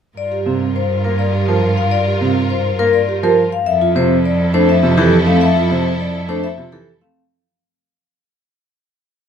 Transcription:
0.17 cello G2, violin section F4 A#4, vibraphone D5
0.32 vibraphone G4
0.46 grand piano C3, vibraphone C4
0.76 vibraphone C5
1.04 grand piano A#3, vibraphone A#4
1.19 vibraphone D5
1.34 vibraphone G4
1.48 grand piano F3, vibraphone A#4
1.77 vibraphone F5
1.91 vibraphone D5
2.07 vibraphone G4
2.21 grand piano C3, vibraphone C4
2.50 vibraphone C5
2.79 grand piano A#3, vibraphone A#4
2.94 vibraphone D5
3.09 vibraphone G4
3.23 grand piano F3, vibraphone A#4
3.52 vibraphone F5
3.66 cello F2, violin section E4 A4, vibraphone E5
3.81 vibraphone F4
3.96 grand piano C3, vibraphone C4 C5
4.26 vibraphone D5
4.54 grand piano A3, vibraphone D4 C5
4.69 vibraphone E5
4.83 grand piano C3, vibraphone F4
4.98 grand piano E3, vibraphone G4 A4
5.26 grand piano A3, vibraphone C4 F5
5.41 vibraphone E5
5.56 vibraphone F4
5.71 grand piano C3, vibraphone C4 C5
6.00 vibraphone D5
6.29 grand piano A3, vibraphone D4 C5
6.44 vibraphone E5
6.58 grand piano C3, vibraphone F4
6.72 grand piano E3, vibraphone G4 A4
7.01 grand piano A3, vibraphone C4 F5

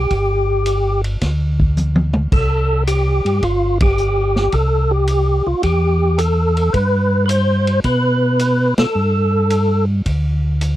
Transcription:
Already playing: tonewheel organ G4
0.10 tonewheel organ G1, kick, ride
0.66 hi-hat pedal, ride
1.04 ride
1.21 tonewheel organ D2, kick, snare, ride
1.60 kick
1.77 hi-hat pedal, high tom
1.95 high tom
2.13 mid tom
2.32 tonewheel organ C2 A4, kick, crash
2.87 tonewheel organ G4, hi-hat pedal, ride
3.25 tonewheel organ G2, ride
3.42 tonewheel organ G1 F4, kick, ride
3.80 tonewheel organ G4, kick, ride
3.97 hi-hat pedal
4.36 snare
4.52 tonewheel organ C2 A4, kick, ride
4.91 tonewheel organ G4
5.07 hi-hat pedal, ride
5.46 tonewheel organ C2 F4
5.63 tonewheel organ E2 G4, kick, ride
6.18 tonewheel organ A4, hi-hat pedal, ride
6.57 ride
6.73 tonewheel organ G2 B4, kick, ride
7.26 tonewheel organ B4 C5, hi-hat pedal, ride
7.67 ride
7.84 tonewheel organ B2 B4, kick, ride
8.39 hi-hat pedal, ride
8.78 tonewheel organ B2 A4, snare, ride
8.95 tonewheel organ G2
9.50 hi-hat pedal, ride
10.06 tonewheel organ D2, kick, ride
10.61 hi-hat pedal, ride

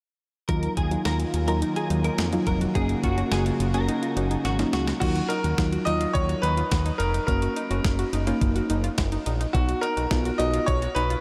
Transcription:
0.49 analog synth bass D#2, analog synth pad D#3 F#3 A#3 F4, synth pluck F#3 D#4 F4, synth arpeggio sound D#4, clean electric guitar A#4, kick, closed hi-hat
0.63 closed hi-hat
0.77 analog synth bass D#2, synth arpeggio sound F4, clean electric guitar G#4, kick, closed hi-hat
0.91 synth pluck F#3 D#4 F4, synth arpeggio sound F#4, closed hi-hat
1.05 analog synth bass D#2, clean electric guitar A#4, snare, closed hi-hat
1.20 synth arpeggio sound F4, closed hi-hat
1.34 analog synth bass D#2, synth arpeggio sound F4, closed hi-hat
1.48 synth pluck F#3 D#4 F4, clean electric guitar A#4, closed hi-hat
1.62 synth arpeggio sound D#4, closed hi-hat
1.76 synth arpeggio sound F4, clean electric guitar G#4, closed hi-hat
1.90 analog synth bass D#2, synth pluck F#3 D#4 F4, synth arpeggio sound D#4, closed hi-hat
2.04 synth arpeggio sound D#4, clean electric guitar A#4, closed hi-hat
2.18 analog synth bass F2, snare, closed hi-hat
2.33 synth pluck F#3 D#4 F4, synth arpeggio sound F4, closed hi-hat
2.47 analog synth bass F1, synth arpeggio sound F#4, clean electric guitar A#4, kick, closed hi-hat
2.61 synth arpeggio sound F#4, closed hi-hat
2.75 analog synth bass F#1, analog synth pad C#3 F#4, synth pluck A#3 C#4 F#4, synth arpeggio sound D#4, clean electric guitar G#4, kick, closed hi-hat
2.89 closed hi-hat
3.03 analog synth bass F#1, synth arpeggio sound F4, clean electric guitar F#4, kick, closed hi-hat
3.18 synth pluck A#3 C#4 F#4, synth arpeggio sound F#4, closed hi-hat
3.32 analog synth bass F#1, clean electric guitar G#4, snare, closed hi-hat
3.46 synth arpeggio sound F4, closed hi-hat
3.60 analog synth bass F#1, synth arpeggio sound F4, closed hi-hat
3.74 synth pluck A#3 C#4 F#4, clean electric guitar A#4, closed hi-hat
3.88 synth arpeggio sound D#4, closed hi-hat
4.02 synth arpeggio sound F4, closed hi-hat
4.17 analog synth bass F#1, synth pluck A#3 C#4 F#4, synth arpeggio sound D#4, closed hi-hat
4.31 synth arpeggio sound D#4, closed hi-hat
4.45 analog synth bass G#1, clean electric guitar F#4, snare, closed hi-hat
4.59 synth pluck A#3 C#4 D#4, synth arpeggio sound F4, snare, closed hi-hat
4.73 analog synth bass C#2, clean electric guitar F#4, synth arpeggio sound F#4, snare, closed hi-hat
4.87 synth arpeggio sound F#4, snare, closed hi-hat
5.00 analog synth bass D#2, synth pluck F#3 D#4 F4, grand piano F#4, kick, closed hi-hat, crash
5.16 synth arpeggio sound F#4, closed hi-hat
5.28 synth arpeggio sound D#4, grand piano A#4, closed hi-hat
5.44 analog synth bass D#2, synth arpeggio sound F#4, closed hi-hat
5.58 analog synth bass D#2, synth pluck F#3 D#4 F4, kick, snare, closed hi-hat
5.72 synth arpeggio sound F#4, closed hi-hat
5.85 analog synth bass D#2, synth pluck F#3 D#4 F4, synth arpeggio sound D#4, grand piano D#5, closed hi-hat
6.01 synth arpeggio sound F4, closed hi-hat
6.13 analog synth bass D#2, grand piano C#5, kick, closed hi-hat
6.29 synth arpeggio sound F#4, closed hi-hat
6.42 analog synth bass D#2, synth arpeggio sound D#4, grand piano B4, closed hi-hat
6.57 synth arpeggio sound F4, closed hi-hat
6.71 analog synth bass D#2, kick, snare, closed hi-hat
6.86 synth arpeggio sound D#4, closed hi-hat
6.98 analog synth bass F1, synth arpeggio sound D#4, grand piano A#4, closed hi-hat
7.14 synth arpeggio sound D#4, closed hi-hat
7.27 analog synth bass F#1, synth pluck A#3 C#4 F#4, grand piano A#4, kick, closed hi-hat
7.42 synth arpeggio sound F#4, closed hi-hat
7.56 synth arpeggio sound D#4, closed hi-hat
7.71 analog synth bass F#1, synth pluck A#3 C#4 F#4, synth arpeggio sound F#4, closed hi-hat
7.85 analog synth bass F#1, kick, snare, closed hi-hat
7.99 synth arpeggio sound F#4, closed hi-hat
8.13 analog synth bass F#1, synth arpeggio sound D#4, closed hi-hat
8.27 synth pluck A#3 C#4 D#4, synth arpeggio sound F4, closed hi-hat
8.41 analog synth bass F#1, kick, closed hi-hat
8.55 synth arpeggio sound F#4, closed hi-hat
8.70 analog synth bass F#1, synth arpeggio sound D#4, closed hi-hat
8.84 synth arpeggio sound F4, closed hi-hat
8.98 analog synth bass F#1, kick, snare, closed hi-hat
9.12 synth arpeggio sound D#4, closed hi-hat
9.26 analog synth bass A#1, synth arpeggio sound D#4, closed hi-hat
9.40 synth arpeggio sound D#4, closed hi-hat
9.53 analog synth bass B1, synth pluck B3 D#4 F#4, grand piano F#4, kick, closed hi-hat
9.69 synth arpeggio sound F#4, closed hi-hat
9.81 synth arpeggio sound D#4, grand piano A#4, closed hi-hat
9.97 analog synth bass B1, synth arpeggio sound F#4, closed hi-hat
10.11 analog synth bass B1, synth pluck B3 D#4 F4, kick, snare, closed hi-hat
10.25 synth arpeggio sound F#4, closed hi-hat
10.38 analog synth bass B1, synth pluck B3 D#4 F#4, synth arpeggio sound D#4, grand piano D#5, closed hi-hat
10.54 synth arpeggio sound F4, closed hi-hat
10.66 analog synth bass B1, grand piano C#5, kick, closed hi-hat
10.82 synth arpeggio sound F#4, closed hi-hat
10.95 analog synth bass B1, synth arpeggio sound D#4, grand piano B4, closed hi-hat
11.10 synth arpeggio sound F4, closed hi-hat

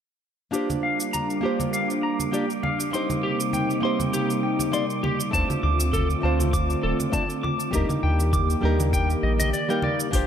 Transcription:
0.51 analog synth pad G3 A#3 D4, nylon-string guitar A#3 D4 F4 G4, clean electric guitar G4, synth texture D6, shaker
0.55 nylon-string guitar C5
0.70 high conga, shaker
0.83 clean electric guitar F5
1.00 shaker
1.13 clean electric guitar A#5, high conga, shaker
1.30 shaker
1.41 nylon-string guitar A#3 D4 F4 G4, clean electric guitar G4
1.46 nylon-string guitar C5
1.60 high conga, shaker
1.73 clean electric guitar F5, shaker
1.90 shaker
2.03 clean electric guitar A#5
2.20 high conga, shaker
2.32 nylon-string guitar A#3 D4 F4 G4 D5, clean electric guitar G4, shaker
2.50 shaker
2.63 clean electric guitar F5, high conga
2.80 shaker
2.91 analog synth pad C3 G3 A#3 D#4, nylon-string guitar A#3 C4 D#4 G4, clean electric guitar C6, shaker
2.95 nylon-string guitar C5
3.10 high conga, shaker
3.23 clean electric guitar G4
3.40 shaker
3.53 clean electric guitar G5, high conga, shaker
3.70 shaker
3.80 nylon-string guitar A#3 C4 D#4 G4, clean electric guitar C6
3.85 nylon-string guitar C5
4.00 high conga, shaker
4.13 clean electric guitar G4, shaker
4.30 shaker
4.43 clean electric guitar G5
4.59 high conga, shaker
4.72 nylon-string guitar A#3 C4 D#4 G4 D5, clean electric guitar C6, shaker
4.90 shaker
5.03 clean electric guitar G4, high conga
5.20 shaker
5.31 analog synth bass D2, analog synth pad D3 A3 C4 F4, nylon-string guitar A3 C4 D4 F4, clean electric guitar A5, kick, shaker
5.35 nylon-string guitar C5
5.50 high conga, shaker
5.63 analog synth bass D2, clean electric guitar D6
5.80 shaker
5.93 clean electric guitar A4, kick, high conga, shaker
6.10 shaker
6.21 analog synth bass D2, nylon-string guitar A3 C4 D4 F4, clean electric guitar A5
6.25 nylon-string guitar C5
6.40 high conga, shaker
6.53 clean electric guitar D6, kick, shaker
6.70 shaker
6.83 analog synth bass D1, clean electric guitar A4
7.00 high conga, shaker
7.12 nylon-string guitar A3 C4 D4 F4 D5, clean electric guitar A5, kick, shaker
7.30 shaker
7.43 clean electric guitar D6, high conga
7.60 shaker
7.71 analog synth bass D#2, analog synth pad D#3 A#3 G4, nylon-string guitar G3 A#3 D4 D#4, clean electric guitar G4, kick, shaker
7.75 nylon-string guitar A#4
7.89 high conga, shaker
8.03 analog synth bass D#2, clean electric guitar G5
8.20 shaker
8.33 clean electric guitar D6, kick, high conga, shaker
8.50 shaker
8.61 analog synth bass D#2, nylon-string guitar G3 A#3 D4 D#4, clean electric guitar G4
8.65 nylon-string guitar A#4
8.80 high conga, shaker
8.93 clean electric guitar G5, kick, shaker
9.10 shaker
9.23 analog synth bass A#1, clean electric guitar D#5
9.40 clean electric guitar D#5, high conga, shaker
9.53 clean electric guitar D5, shaker
9.69 nylon-string guitar G3 A#3 D#4 A#4, clean electric guitar G5, shaker
9.82 clean electric guitar D5, high conga
10.00 shaker
10.11 analog synth bass A#1, analog synth pad G3 A#3 D4, nylon-string guitar A#3 D4 F4 G4, clean electric guitar G4, kick, open hi-hat, shaker
10.15 nylon-string guitar C5

